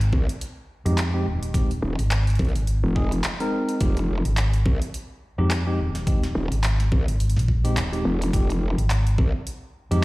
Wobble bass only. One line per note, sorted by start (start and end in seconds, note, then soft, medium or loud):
0.13 0.27 C2 loud
1.82 1.96 D#1 loud
2.39 2.53 C2 loud
2.83 3.22 F1 loud
3.81 4.23 F1 loud
4.66 4.79 C2 loud
6.35 6.49 D#1 loud
6.92 7.06 C2 loud
8.05 8.32 F1 loud
8.33 8.76 F1 loud
9.18 9.32 C2 medium